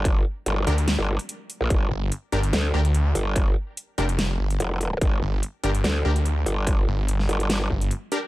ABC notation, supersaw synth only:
X:1
M:4/4
L:1/8
Q:"Swing 16ths" 1/4=145
K:Gm
V:1 name="Supersaw synth"
z3 [DGB] z4 | z3 [DGB] z [DGB] z2 | z3 [DGB] z4 | z3 [DGB] z [DGB] z2 |
z6 z [DGB] |]